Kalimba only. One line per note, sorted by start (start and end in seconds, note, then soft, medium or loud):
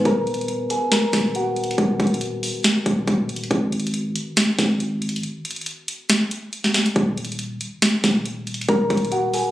0.05 0.66 A#4 loud
0.05 0.67 A#5 medium
0.70 0.89 G#4 medium
0.70 0.90 G#5 medium
0.92 1.32 A#4 medium
0.92 1.33 A#5 medium
1.35 1.76 F#4 medium
1.35 1.76 F#5 medium
8.68 9.09 A#4 loud
8.68 9.10 A#5 medium
9.12 9.31 F#4 medium
9.12 9.31 F#5 medium
9.34 9.51 G#4 medium
9.34 9.51 G#5 medium